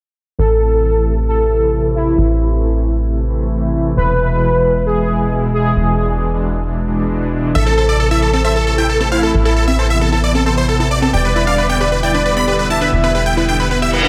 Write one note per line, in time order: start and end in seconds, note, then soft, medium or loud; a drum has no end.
0.39 2.15 A1 medium
0.39 0.54 C3 medium
0.39 0.54 E3 medium
0.39 0.54 A3 medium
0.39 0.54 E4 medium
0.39 1.19 A4 loud
0.61 0.69 C3 medium
0.61 0.69 E3 medium
0.61 0.69 A3 medium
0.61 0.69 E4 medium
0.72 0.88 C3 medium
0.72 0.88 E3 medium
0.72 0.88 A3 medium
0.72 0.88 E4 medium
0.95 1.10 C3 medium
0.95 1.10 E3 medium
0.95 1.10 A3 medium
0.95 1.10 E4 medium
1.28 1.44 C3 medium
1.28 1.44 E3 medium
1.28 1.44 A3 medium
1.28 1.44 E4 medium
1.28 1.86 A4 medium
1.51 1.66 C3 medium
1.51 1.66 E3 medium
1.51 1.66 A3 medium
1.51 1.66 E4 medium
1.73 1.89 C3 medium
1.73 1.88 E3 medium
1.73 1.89 A3 medium
1.73 1.89 E4 medium
1.95 2.11 C3 medium
1.95 2.11 E3 medium
1.95 2.11 A3 medium
1.95 2.11 E4 medium
1.95 2.54 E4 medium
2.18 3.95 A1 medium
2.18 2.33 C3 medium
2.18 2.33 E3 medium
2.18 2.33 A3 medium
2.18 2.33 E4 medium
2.40 2.48 C3 medium
2.40 2.48 E3 medium
2.40 2.48 A3 medium
2.40 2.48 E4 medium
2.51 2.67 C3 medium
2.51 2.67 E3 medium
2.51 2.67 A3 medium
2.51 2.67 E4 medium
2.74 2.89 C3 medium
2.74 2.89 E3 medium
2.74 2.89 A3 medium
2.74 2.89 E4 medium
3.07 3.23 C3 medium
3.07 3.23 E3 medium
3.07 3.23 A3 medium
3.07 3.23 E4 medium
3.30 3.45 C3 medium
3.30 3.45 E3 medium
3.30 3.45 A3 medium
3.30 3.45 E4 medium
3.52 3.68 C3 medium
3.52 3.68 E3 medium
3.52 3.68 A3 medium
3.52 3.68 E4 medium
3.74 3.90 C3 medium
3.74 3.90 E3 medium
3.74 3.90 A3 medium
3.74 3.90 E4 medium
3.97 5.74 E1 medium
3.97 4.13 B2 medium
3.97 4.13 E3 medium
3.97 4.13 G#3 medium
3.97 4.13 E4 medium
3.97 4.77 B4 loud
4.19 4.27 B2 medium
4.19 4.27 E3 medium
4.19 4.27 G#3 medium
4.19 4.27 E4 medium
4.30 4.46 B2 medium
4.30 4.46 E3 medium
4.30 4.46 G#3 medium
4.30 4.46 E4 medium
4.53 4.69 B2 medium
4.53 4.68 E3 medium
4.53 4.69 G#3 medium
4.53 4.68 E4 medium
4.86 5.02 B2 medium
4.86 5.02 E3 medium
4.86 5.02 G#3 medium
4.86 5.02 E4 medium
4.86 5.45 G#4 loud
5.09 5.24 B2 medium
5.09 5.24 E3 medium
5.09 5.24 G#3 medium
5.09 5.24 E4 medium
5.31 5.47 B2 medium
5.31 5.47 E3 medium
5.31 5.47 G#3 medium
5.31 5.47 E4 medium
5.53 5.69 B2 medium
5.53 5.69 E3 medium
5.53 5.69 G#3 medium
5.53 5.69 E4 medium
5.53 6.12 G#4 loud
5.76 7.53 E1 medium
5.76 5.92 B2 medium
5.76 5.92 E3 medium
5.76 5.92 G#3 medium
5.76 5.92 D4 medium
5.98 6.06 B2 medium
5.98 6.06 E3 medium
5.98 6.06 G#3 medium
5.98 6.06 D4 medium
6.09 6.25 B2 medium
6.09 6.25 E3 medium
6.09 6.25 G#3 medium
6.09 6.25 D4 medium
6.32 6.48 B2 medium
6.32 6.48 E3 medium
6.32 6.48 G#3 medium
6.32 6.48 D4 medium
6.65 6.81 B2 medium
6.65 6.81 E3 medium
6.65 6.81 G#3 medium
6.65 6.81 D4 medium
6.88 7.04 B2 medium
6.88 7.03 E3 medium
6.88 7.04 G#3 medium
6.88 7.04 D4 medium
7.10 7.26 B2 medium
7.10 7.26 E3 medium
7.10 7.26 G#3 medium
7.10 7.26 D4 medium
7.33 7.48 B2 medium
7.33 7.48 E3 medium
7.33 7.48 G#3 medium
7.33 7.48 D4 medium
7.55 9.32 A1 medium
7.55 7.71 C3 medium
7.55 7.71 E3 medium
7.55 7.71 A3 medium
7.55 7.71 E4 medium
7.55 8.36 A4 loud
7.55 7.63 E5 loud
7.66 7.77 C4 medium
7.66 7.74 A4 medium
7.77 7.85 C3 medium
7.77 7.85 E3 medium
7.77 7.85 A3 medium
7.77 7.85 E4 medium
7.77 7.85 A4 medium
7.77 7.82 C5 medium
7.89 8.04 C3 medium
7.89 8.04 E3 medium
7.89 8.04 A3 medium
7.89 8.04 E4 medium
7.89 7.97 D5 medium
8.00 8.07 A4 medium
8.00 8.08 A4 medium
8.11 8.27 C3 medium
8.11 8.27 E3 medium
8.11 8.27 A3 medium
8.11 8.18 E4 medium
8.11 8.27 E4 medium
8.11 8.19 E5 medium
8.22 8.30 A4 medium
8.33 8.44 C4 medium
8.33 8.41 A4 medium
8.44 8.60 C3 medium
8.44 8.60 E3 medium
8.44 8.60 A3 medium
8.44 8.60 E4 medium
8.44 9.03 A4 medium
8.44 8.49 C5 medium
8.44 8.52 E5 medium
8.56 8.64 A4 medium
8.67 8.83 C3 medium
8.67 8.83 E3 medium
8.67 8.83 A3 medium
8.67 8.83 E4 medium
8.67 8.74 A4 medium
8.67 8.75 A4 medium
8.78 8.85 E4 medium
8.78 8.86 G5 medium
8.89 9.05 C3 medium
8.89 9.05 E3 medium
8.89 9.05 A3 medium
8.89 9.05 E4 medium
8.89 8.97 A4 medium
9.00 9.11 C4 medium
9.00 9.08 A4 medium
9.12 9.27 C3 medium
9.12 9.27 E3 medium
9.12 9.27 A3 medium
9.12 9.27 E4 medium
9.12 9.70 E4 loud
9.12 9.16 C5 medium
9.12 9.20 F5 medium
9.23 9.31 A4 medium
9.34 11.11 A1 medium
9.34 9.50 C3 medium
9.34 9.50 E3 medium
9.34 9.50 B3 medium
9.34 9.50 E4 medium
9.34 9.41 A4 medium
9.45 9.53 E4 medium
9.45 9.53 A4 medium
9.56 9.64 C3 medium
9.56 9.64 E3 medium
9.56 9.64 B3 medium
9.56 9.64 E4 medium
9.56 9.64 A4 medium
9.68 9.83 C3 medium
9.68 9.83 E3 medium
9.68 9.83 B3 medium
9.68 9.78 C4 medium
9.68 9.83 E4 medium
9.68 9.76 E5 medium
9.79 9.87 A4 medium
9.79 9.83 C5 medium
9.90 10.06 C3 medium
9.90 10.06 E3 medium
9.90 10.06 B3 medium
9.90 10.06 E4 medium
9.90 9.98 E5 medium
10.01 10.08 A4 medium
10.01 10.09 A4 medium
10.12 10.20 E4 medium
10.12 10.20 A4 medium
10.24 10.39 C3 medium
10.24 10.39 E3 medium
10.24 10.39 B3 medium
10.24 10.39 E4 medium
10.24 10.32 D5 medium
10.35 10.46 C4 medium
10.35 10.43 A4 medium
10.46 10.62 C3 medium
10.46 10.62 E3 medium
10.46 10.62 B3 medium
10.46 10.62 E4 medium
10.46 10.54 A4 medium
10.46 10.50 C5 medium
10.58 10.65 C5 medium
10.68 10.84 C3 medium
10.68 10.84 E3 medium
10.68 10.84 B3 medium
10.68 10.84 E4 medium
10.68 10.76 A4 medium
10.68 10.77 A4 medium
10.80 10.87 E4 medium
10.80 10.88 A4 medium
10.91 11.07 C3 medium
10.91 11.07 E3 medium
10.91 11.07 B3 medium
10.91 11.07 E4 medium
10.91 10.99 D5 medium
11.02 11.13 C4 medium
11.02 11.10 A4 medium
11.13 12.90 E1 medium
11.13 11.29 D3 medium
11.13 11.29 G3 medium
11.13 11.29 B3 medium
11.13 11.29 E4 medium
11.13 11.18 G4 medium
11.13 11.94 D5 loud
11.13 11.21 G5 loud
11.25 11.33 B4 medium
11.36 11.44 D3 medium
11.36 11.44 G3 medium
11.36 11.44 B3 medium
11.36 11.43 E4 medium
11.36 11.44 E4 medium
11.36 11.44 B4 medium
11.47 11.63 D3 medium
11.47 11.63 G3 medium
11.47 11.63 B3 medium
11.47 11.54 D4 medium
11.47 11.63 E4 medium
11.47 11.55 F5 medium
11.58 11.66 B4 medium
11.69 11.85 D3 medium
11.69 11.85 G3 medium
11.69 11.80 B3 medium
11.69 11.85 B3 medium
11.69 11.85 E4 medium
11.69 11.77 G5 medium
11.80 11.85 G4 medium
11.80 11.88 B4 medium
11.92 12.00 B4 medium
12.03 12.19 D3 medium
12.03 12.19 G3 medium
12.03 12.19 B3 medium
12.03 12.10 E4 medium
12.03 12.19 E4 medium
12.03 12.61 D5 medium
12.03 12.11 G5 medium
12.14 12.21 D4 medium
12.14 12.22 B4 medium
12.25 12.41 D3 medium
12.25 12.41 G3 medium
12.25 12.41 B3 medium
12.25 12.41 E4 medium
12.25 12.33 B4 medium
12.36 12.47 B3 medium
12.36 12.44 B5 medium
12.47 12.63 D3 medium
12.47 12.63 G3 medium
12.47 12.63 B3 medium
12.47 12.63 E4 medium
12.47 12.52 G4 medium
12.47 12.56 B4 medium
12.59 12.67 B4 medium
12.70 12.86 D3 medium
12.70 12.86 G3 medium
12.70 12.86 B3 medium
12.70 12.86 E4 medium
12.70 12.77 E4 medium
12.70 13.28 E5 medium
12.70 12.78 A5 medium
12.81 12.88 D4 medium
12.81 12.89 B4 medium
12.92 14.08 E1 medium
12.92 13.08 D3 medium
12.92 13.08 G3 medium
12.92 13.08 B3 medium
12.92 13.08 E4 medium
13.03 13.14 B3 medium
13.03 13.12 B4 medium
13.15 13.23 D3 medium
13.15 13.23 G3 medium
13.15 13.23 B3 medium
13.15 13.23 E4 medium
13.15 13.19 G4 medium
13.15 13.23 B4 medium
13.26 13.42 D3 medium
13.26 13.42 G3 medium
13.26 13.42 B3 medium
13.26 13.42 E4 medium
13.26 13.34 G5 medium
13.37 13.44 E4 medium
13.37 13.45 B4 medium
13.48 13.64 D3 medium
13.48 13.64 G3 medium
13.48 13.64 B3 medium
13.48 13.56 D4 medium
13.48 13.64 E4 medium
13.48 13.56 G5 medium
13.60 13.68 B4 medium
13.71 13.81 B3 medium
13.71 13.79 B4 medium
13.82 13.98 D3 medium
13.82 13.98 G3 medium
13.82 13.98 B3 medium
13.82 13.97 E4 medium
13.82 13.86 G4 medium
13.82 13.90 E5 medium
13.82 reverse cymbal medium
13.93 14.01 B4 medium
14.04 14.08 D3 medium
14.04 14.08 G3 medium
14.04 14.08 B3 medium
14.04 14.08 D4 medium
14.04 14.08 E4 medium
14.04 14.08 B4 medium